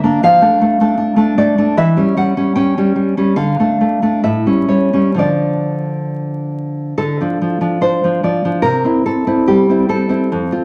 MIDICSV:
0, 0, Header, 1, 2, 480
1, 0, Start_track
1, 0, Key_signature, -1, "minor"
1, 0, Tempo, 791557
1, 119, Time_signature, 2, 2, 24, 8
1, 2041, Tempo, 858369
1, 2521, Tempo, 917431
1, 3961, Tempo, 828729
1, 6085, End_track
2, 0, Start_track
2, 0, Title_t, "Nylon-string guitar"
2, 0, Program_c, 0, 24
2, 0, Note_on_c, 0, 50, 43
2, 0, Note_on_c, 0, 76, 71
2, 22, Note_on_c, 0, 62, 50
2, 27, Note_on_c, 0, 58, 44
2, 118, Note_off_c, 0, 62, 0
2, 121, Note_off_c, 0, 58, 0
2, 124, Note_off_c, 0, 76, 0
2, 129, Note_off_c, 0, 50, 0
2, 140, Note_on_c, 0, 53, 60
2, 144, Note_on_c, 0, 77, 83
2, 245, Note_off_c, 0, 53, 0
2, 250, Note_on_c, 0, 57, 41
2, 254, Note_on_c, 0, 62, 40
2, 365, Note_off_c, 0, 57, 0
2, 373, Note_on_c, 0, 57, 47
2, 483, Note_off_c, 0, 57, 0
2, 486, Note_off_c, 0, 62, 0
2, 490, Note_on_c, 0, 57, 43
2, 493, Note_on_c, 0, 62, 48
2, 584, Note_off_c, 0, 62, 0
2, 592, Note_on_c, 0, 62, 46
2, 697, Note_off_c, 0, 57, 0
2, 705, Note_on_c, 0, 57, 40
2, 706, Note_off_c, 0, 62, 0
2, 713, Note_on_c, 0, 62, 43
2, 816, Note_off_c, 0, 77, 0
2, 829, Note_off_c, 0, 57, 0
2, 835, Note_on_c, 0, 57, 43
2, 836, Note_on_c, 0, 74, 74
2, 951, Note_off_c, 0, 62, 0
2, 952, Note_off_c, 0, 57, 0
2, 959, Note_on_c, 0, 57, 40
2, 959, Note_on_c, 0, 62, 47
2, 1061, Note_off_c, 0, 62, 0
2, 1061, Note_off_c, 0, 74, 0
2, 1062, Note_off_c, 0, 57, 0
2, 1075, Note_on_c, 0, 52, 60
2, 1078, Note_on_c, 0, 76, 78
2, 1188, Note_off_c, 0, 52, 0
2, 1192, Note_on_c, 0, 55, 37
2, 1198, Note_on_c, 0, 61, 38
2, 1302, Note_off_c, 0, 76, 0
2, 1308, Note_off_c, 0, 55, 0
2, 1314, Note_on_c, 0, 55, 43
2, 1318, Note_on_c, 0, 78, 75
2, 1428, Note_off_c, 0, 55, 0
2, 1430, Note_off_c, 0, 61, 0
2, 1437, Note_on_c, 0, 55, 42
2, 1437, Note_on_c, 0, 61, 44
2, 1543, Note_off_c, 0, 78, 0
2, 1547, Note_off_c, 0, 61, 0
2, 1550, Note_on_c, 0, 79, 73
2, 1555, Note_on_c, 0, 61, 44
2, 1675, Note_off_c, 0, 61, 0
2, 1677, Note_off_c, 0, 55, 0
2, 1682, Note_on_c, 0, 61, 41
2, 1685, Note_on_c, 0, 55, 41
2, 1783, Note_off_c, 0, 79, 0
2, 1786, Note_off_c, 0, 55, 0
2, 1793, Note_on_c, 0, 55, 43
2, 1917, Note_off_c, 0, 61, 0
2, 1918, Note_off_c, 0, 55, 0
2, 1923, Note_on_c, 0, 61, 47
2, 1926, Note_on_c, 0, 55, 44
2, 2034, Note_off_c, 0, 55, 0
2, 2034, Note_off_c, 0, 61, 0
2, 2038, Note_on_c, 0, 77, 78
2, 2041, Note_on_c, 0, 50, 56
2, 2155, Note_off_c, 0, 50, 0
2, 2170, Note_on_c, 0, 57, 34
2, 2171, Note_on_c, 0, 62, 39
2, 2282, Note_off_c, 0, 57, 0
2, 2288, Note_on_c, 0, 57, 40
2, 2403, Note_off_c, 0, 57, 0
2, 2405, Note_off_c, 0, 62, 0
2, 2409, Note_on_c, 0, 57, 36
2, 2413, Note_on_c, 0, 62, 42
2, 2501, Note_off_c, 0, 77, 0
2, 2515, Note_off_c, 0, 57, 0
2, 2516, Note_off_c, 0, 62, 0
2, 2527, Note_on_c, 0, 76, 66
2, 2531, Note_on_c, 0, 45, 50
2, 2640, Note_off_c, 0, 45, 0
2, 2645, Note_on_c, 0, 55, 34
2, 2649, Note_on_c, 0, 61, 39
2, 2752, Note_off_c, 0, 76, 0
2, 2756, Note_off_c, 0, 55, 0
2, 2761, Note_on_c, 0, 55, 36
2, 2762, Note_on_c, 0, 73, 53
2, 2886, Note_off_c, 0, 61, 0
2, 2888, Note_off_c, 0, 55, 0
2, 2892, Note_on_c, 0, 61, 39
2, 2896, Note_on_c, 0, 55, 33
2, 2996, Note_off_c, 0, 73, 0
2, 2999, Note_off_c, 0, 61, 0
2, 3000, Note_off_c, 0, 55, 0
2, 3002, Note_on_c, 0, 50, 49
2, 3011, Note_on_c, 0, 53, 34
2, 3021, Note_on_c, 0, 62, 34
2, 3026, Note_on_c, 0, 74, 58
2, 3719, Note_off_c, 0, 74, 0
2, 3939, Note_off_c, 0, 50, 0
2, 3943, Note_off_c, 0, 53, 0
2, 3948, Note_off_c, 0, 62, 0
2, 3961, Note_on_c, 0, 69, 75
2, 3964, Note_on_c, 0, 50, 52
2, 4083, Note_off_c, 0, 50, 0
2, 4093, Note_on_c, 0, 53, 38
2, 4099, Note_on_c, 0, 62, 39
2, 4208, Note_off_c, 0, 53, 0
2, 4215, Note_on_c, 0, 53, 38
2, 4321, Note_off_c, 0, 53, 0
2, 4324, Note_off_c, 0, 62, 0
2, 4328, Note_on_c, 0, 53, 41
2, 4331, Note_on_c, 0, 62, 46
2, 4433, Note_off_c, 0, 69, 0
2, 4438, Note_off_c, 0, 62, 0
2, 4445, Note_on_c, 0, 62, 42
2, 4448, Note_on_c, 0, 72, 72
2, 4570, Note_off_c, 0, 53, 0
2, 4577, Note_off_c, 0, 62, 0
2, 4577, Note_on_c, 0, 53, 41
2, 4584, Note_on_c, 0, 62, 43
2, 4681, Note_off_c, 0, 72, 0
2, 4682, Note_off_c, 0, 53, 0
2, 4689, Note_on_c, 0, 53, 40
2, 4693, Note_on_c, 0, 74, 52
2, 4806, Note_off_c, 0, 62, 0
2, 4807, Note_off_c, 0, 53, 0
2, 4814, Note_on_c, 0, 53, 38
2, 4814, Note_on_c, 0, 62, 45
2, 4912, Note_off_c, 0, 74, 0
2, 4914, Note_on_c, 0, 70, 74
2, 4919, Note_off_c, 0, 62, 0
2, 4919, Note_on_c, 0, 48, 52
2, 4920, Note_off_c, 0, 53, 0
2, 5039, Note_off_c, 0, 48, 0
2, 5042, Note_on_c, 0, 60, 37
2, 5050, Note_on_c, 0, 64, 39
2, 5149, Note_off_c, 0, 70, 0
2, 5166, Note_off_c, 0, 60, 0
2, 5166, Note_on_c, 0, 69, 58
2, 5173, Note_on_c, 0, 60, 39
2, 5282, Note_off_c, 0, 60, 0
2, 5282, Note_off_c, 0, 64, 0
2, 5289, Note_on_c, 0, 60, 39
2, 5290, Note_on_c, 0, 64, 40
2, 5396, Note_off_c, 0, 69, 0
2, 5409, Note_on_c, 0, 67, 66
2, 5413, Note_on_c, 0, 55, 41
2, 5528, Note_off_c, 0, 60, 0
2, 5535, Note_on_c, 0, 60, 39
2, 5536, Note_off_c, 0, 64, 0
2, 5543, Note_on_c, 0, 64, 45
2, 5638, Note_off_c, 0, 67, 0
2, 5641, Note_off_c, 0, 60, 0
2, 5647, Note_on_c, 0, 60, 41
2, 5650, Note_on_c, 0, 69, 66
2, 5758, Note_off_c, 0, 60, 0
2, 5764, Note_on_c, 0, 60, 41
2, 5765, Note_off_c, 0, 64, 0
2, 5772, Note_on_c, 0, 64, 49
2, 5872, Note_off_c, 0, 60, 0
2, 5877, Note_off_c, 0, 64, 0
2, 5889, Note_off_c, 0, 55, 0
2, 5897, Note_on_c, 0, 41, 59
2, 6006, Note_off_c, 0, 41, 0
2, 6014, Note_on_c, 0, 60, 41
2, 6015, Note_on_c, 0, 65, 41
2, 6085, Note_off_c, 0, 60, 0
2, 6085, Note_off_c, 0, 65, 0
2, 6085, Note_off_c, 0, 69, 0
2, 6085, End_track
0, 0, End_of_file